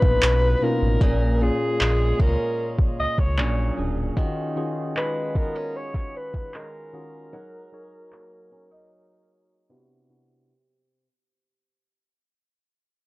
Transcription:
Already playing: B2 F#3 A#3 B3 C#4 D4 D#4 F4 B4
0.02 A#1, kick
0.22 B1, clap
0.62 B2 A#3 C#4 D#4 F4 A#4
0.82 A1
1.01 A#1 A#2 A#3 C#4 G#4, kick
1.41 A#2 A#3 C#4 F4 G#4
1.80 A#1 G#3, clap
2.20 C#2 C#4 A#4, kick
2.79 kick
2.99 C#2 D#5
3.18 C#2 C#5, kick
3.38 A#1 A#2 F#3 C#4 D4 G#4, clap
3.77 D1 A#2 F#3 C#4 D4 G#4
4.17 D#3 C#4 F4 F#4 G#4, kick
4.56 D#3 C#4 F4 F#4 G#4
4.96 G#3 B4, clap
5.35 B3 A#4, kick
5.55 C#4
5.76 C#5
5.94 kick
6.16 B4
6.34 kick
6.54 G#3 A#4, clap
6.93 D#3 C#4 F4 F#4 G#4
7.33 F#3 D#4 G#4 A#4
7.72 F#3 D#4 G#4 C#5
8.12 A#3, clap
8.51 C#4
8.71 D#4
9.69 C3 B3 D4 E4 F#4
10.09 C3 B3 D4 E4 F#4

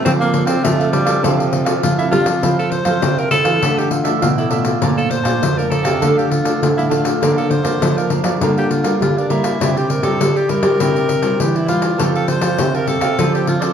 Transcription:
Already playing: C4 D4 A4
0.04 F3 C4 D4 A4 D5 F5, pandeiro
0.20 A#3 A4 D5 F5, pandeiro
0.34 C4 D4 A4, pandeiro
0.46 C4 A4 D5 F5, pandeiro
0.64 C3 F3 A3, pandeiro
0.79 C4 D4 A4 D5 F5, pandeiro
0.92 G3 D4 A4 D5 F5, pandeiro
1.05 C4 D4 A4 D5 F5, pandeiro
1.23 C3 F3 D4 A4 D5 F5, pandeiro
1.39 A4 D5 F5, pandeiro
1.52 C4 D4 A4, muted cavaquinho stroke, pandeiro
1.65 A4 D5 F5, pandeiro
1.83 C3 F3 F4, pandeiro
1.98 C4 D4 E4 A4 D5 F5, pandeiro
2.11 G3 D4 F4 A4 D5 F5, pandeiro
2.25 F3 C4 A4 D5 F5, pandeiro
2.43 F3 E4 A4 C5 F5, pandeiro
2.58 A4 C5 F5, pandeiro
2.71 C5, pandeiro
2.85 F3 C4 E4 A4 C5 F5, pandeiro
3.02 C3, pandeiro
3.18 A4 A#4 C5 F5, pandeiro
3.31 C4 E4 A4 C5 F5, pandeiro
3.44 E3 A4 C5 F5, pandeiro
3.62 D3 E3 A3 D4 A4 D5 E5, pandeiro
3.78 G4 A4 D5 E5, pandeiro
3.91 F4, muted cavaquinho stroke, pandeiro
4.04 E3 A3 D4 A4 D5 E5, pandeiro
4.22 A2 B2 F4, pandeiro
4.38 E4 A4 D5 E5, pandeiro
4.50 E3 A3 D4 F4 A4 D5 E5, pandeiro
4.64 A4 D5 E5, pandeiro
4.82 A#2 F3 A3 D4 A#4 D5 F5 A5, pandeiro
4.97 A4 D5 F5 A5, pandeiro
5.10 C5, pandeiro
5.24 A#2 F3 A3 D4 D5 F5 A5, pandeiro
5.42 F2 F3, pandeiro
5.57 F3 A3 D4 A#4 D5 F5 A5, pandeiro
5.70 A4 A#4 D5 F5 A5, pandeiro
5.83 C3 D5 F5 A5, pandeiro
6.01 D3 F3 A3 D4 A4 D5 F5, pandeiro
6.17 G4 A4 D5 F5, pandeiro
6.30 F4, muted cavaquinho stroke, pandeiro
6.44 F3 A3 D4 A4 D5 F5, pandeiro
6.62 A2 D3 F4, pandeiro
6.77 F3 A3 D4 E4 A4 D5 F5, pandeiro
6.89 D4 F4 A4 D5 F5, pandeiro
7.04 A4 D5 F5, pandeiro
7.21 D3 F3 A#3 D4 A#4 D5 F5, pandeiro
7.37 A4 A#4 D5 F5, pandeiro
7.51 C5, pandeiro
7.63 D3 F3 A#3 D4 A#4 D5 F5, pandeiro
7.81 D3 F3, pandeiro
7.97 A#4 D5 F5, pandeiro
8.10 F3 A#3 D4 A#4 D5 F5, pandeiro
8.24 F3 A#4 D5 F5, pandeiro
8.41 D3 G3 A#3 F4 G4 A#4 D5 F5, pandeiro
8.57 G4 A#4 D5 F5, pandeiro
8.70 F4, muted cavaquinho stroke, pandeiro
8.84 G3 A#3 F4 A#4 D5 F5, pandeiro
9.00 D3 G3 F4, pandeiro
9.17 D4 A#4 D5 F5, pandeiro
9.29 G3 A#3 E4 F4 G4 A#4 D5 F5, pandeiro
9.44 A#4 D5 F5, pandeiro
9.60 C3 G3 D4 E4 G4 C5 D5, pandeiro
9.77 G4 C5 D5, pandeiro
9.90 A#4, pandeiro
10.03 C3 G3 D4 E4 G4 A4 C5 D5, pandeiro
10.20 G3, pandeiro
10.36 G4 C5 D5, pandeiro
10.49 G3 D4 E4 G4 A#4 C5 D5, pandeiro
10.63 G3 G4 C5 D5, pandeiro
10.80 C3 G3 D4 E4 G4 C5 D5, pandeiro
10.96 G4 C5 D5, pandeiro
11.09 muted cavaquinho stroke, pandeiro
11.22 G3 D4 E4 G4 C5 D5, pandeiro
11.40 E3 G3 G4, pandeiro
11.55 E4 G4 C5 D5, pandeiro
11.68 G3 D4 E4 F4 G4 C5 D5, pandeiro
11.81 G4 C5 D5, pandeiro
11.98 F3 C4 G4 A4 F5 A5, pandeiro
12.14 G4 A4 F5 A5, pandeiro
12.28 C5, pandeiro
12.41 F3 C4 G4 A4 F5 A5, pandeiro
12.58 C3, pandeiro
12.75 G4 A#4 F5 A5, pandeiro
12.87 C4 G4 A4 F5 A5, pandeiro
13.01 C3 G4 F5 A5, pandeiro
13.18 F3 C4 D4 F4 A4 C5 D5, pandeiro
13.34 G4 A4 C5 D5, pandeiro
13.47 F4, muted cavaquinho stroke, pandeiro
13.60 C4 D4 A4 C5 D5, pandeiro

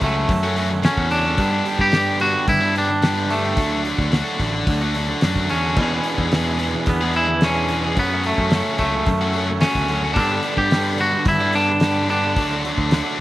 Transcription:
Already playing: F#2 C#3
0.01 C#2 F#3 A3 C#4, kick, open hi-hat
0.06 F#4
0.14 A3 C#4 F#4, muted distorted electric guitar stroke
0.29 F#2, kick, open hi-hat
0.43 F#3 A3 C#4 F#4
0.56 F#3 A3 C#4 F#4, open hi-hat
0.70 A3 C#4 F#4, muted distorted electric guitar stroke
0.83 F#2 C#3 F#3 A3 C#4 F#4, snare, open hi-hat
0.97 E2, kick
1.11 F#3 A3 C#4 D4 F#4, open hi-hat
1.25 F#3 A3 C#4 F#4
1.38 G2 D3 G3 B3 D4 G4, kick, open hi-hat
1.52 G3 B3 D4 G4
1.65 G3 B3 D4 G4, open hi-hat
1.79 G2 G4, kick
1.92 G2 D3 G3 B3 D4 G4, snare, open hi-hat
2.20 G3 B3 D4 F#4 G4, open hi-hat
2.34 B3 D4 G4, muted distorted electric guitar stroke
2.48 G2 E4, kick, open hi-hat
2.61 G3 B3 D4 G4
2.75 G3 B3 D4 G4, open hi-hat
2.89 D4 G4, muted distorted electric guitar stroke
2.93 B3
3.02 G2 D3 G3 B3 D4 G4, snare, open hi-hat
3.30 G3 A3 B3 D4 G4, open hi-hat
3.43 G3 B3 D4 G4
3.55 D2 D3 F#3 A3 D4 F#4, kick, open hi-hat
3.70 A3 D4 F#4
3.85 F#3 A3 D4 F#4, open hi-hat
3.98 D2, kick, snare
4.11 D3 F#3 A3 D4 F#4, snare, open hi-hat
4.39 A1 D3 F#3 A3 D4 F#4, kick, open hi-hat
4.53 A3 D4 F#4, muted distorted electric guitar stroke
4.67 D2, kick, open hi-hat
4.81 A3 D4 F#4
4.94 D3 F#3 A3 D4 F#4, open hi-hat
5.09 A3 D4 F#4, muted distorted electric guitar stroke
5.21 F#2 D3 F#3 A3 D4, snare, open hi-hat
5.25 F#4
5.36 kick
5.49 E2 D3 F#3 A3 C#4 D4 F#4, open hi-hat
5.63 A3 D4 F#4
5.76 E2 B2 E3 G#3 B3 D4 B4 E5 G#5 D6, kick, crash
5.80 G#4
5.91 E3 G#3 B3 D4 G#4
6.04 E3 B3 D4, open hi-hat
6.08 G#4
6.18 E2, kick
6.32 E2 B2 E3 G#3 B3 D4 G#4, snare, open hi-hat
6.59 E3 G#3 B3 D4 G#4, open hi-hat
6.73 B3 D4 G#4, muted distorted electric guitar stroke
6.86 E2 B3, kick, open hi-hat
7.01 E3 G#3 B3 D4 G#4
7.14 E3 G#3 B3 D4 E4 G#4, open hi-hat
7.28 B3 D4 G#4, muted distorted electric guitar stroke
7.41 E2 B2 E3 G#3 B3 C#4 D4, snare, open hi-hat
7.45 G#4
7.68 E3 G#3 B3 D4 G#4, open hi-hat
7.84 E3 G#3 B3 D4 G#4
7.96 F#2 C#3 F#3 A3 B3 C#4 F#4 A4 E5 F#5 C#6, kick, open hi-hat
8.12 F#3 A3 C#4 F#4
8.24 F#3 A3 C#4, open hi-hat
8.28 F#4
8.38 F#2, kick
8.51 F#2 C#3 F#3 A3 C#4, snare, open hi-hat
8.55 F#4
8.78 C#2 F#3 A3 C#4, kick, open hi-hat
8.83 F#4
8.94 A3 C#4 F#4, muted distorted electric guitar stroke
9.06 F#2, kick, open hi-hat
9.21 F#3 A3 C#4 F#4
9.34 F#3 A3 C#4, open hi-hat
9.38 F#4
9.48 A3 C#4 F#4, muted distorted electric guitar stroke
9.61 F#2 C#3 F#3 A3 C#4 F#4, snare, open hi-hat
9.75 D2, kick
9.88 F#3 A3 C#4 F#4, open hi-hat
10.04 F#3 A3 C#4 F#4
10.14 G2 D4 D5 G5 B5, kick, open hi-hat
10.18 D3 G3 B3 D4 G4
10.32 G3 B3 D4 G4
10.43 D3 G3 B3 D4, open hi-hat
10.57 G2 G4, kick
10.71 G2 D3 G3 B3 D4, snare, open hi-hat
10.75 G4
10.98 D3 G3 B3 D4 F#4, open hi-hat
11.03 G4
11.13 G3 B3 D4, muted distorted electric guitar stroke
11.25 G2 E4, kick, open hi-hat
11.40 G3 B3 D4 G4
11.53 D3 G3 B3 D4, open hi-hat
11.57 D4 G4
11.67 G3 B3 D4, muted distorted electric guitar stroke
11.80 G2 D3 G3, snare, open hi-hat
11.84 B3 D4 G4
12.09 D3 G3 B3 D4, open hi-hat
12.13 G4
12.24 G3 B3 D4 G4
12.36 D2 D3 F#3 A3 F#5 D6, kick, open hi-hat
12.41 D4 F#4
12.52 F#3 A3 D4 F#4
12.65 D3 F#3 A3 D4, open hi-hat
12.78 D2, kick
12.91 D3 F#3 A3, snare, open hi-hat
12.96 D4 F#4

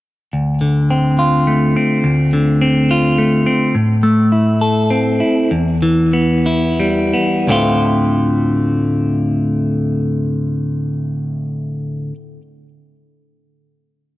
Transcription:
0.33 D2
0.61 D3
0.90 C4
1.19 F4
1.47 A3
1.76 C4
2.04 D2
2.33 D3
2.61 C4
2.91 F4
3.18 A3
3.46 C4
3.75 A2
4.03 A3
4.32 E4
4.61 A4
4.90 C4
5.20 E4
5.51 E2
5.82 E3
6.13 B3
6.46 E4
6.80 G3
7.13 B3
7.47 D2 A2 D3 A3 C4
7.51 F4

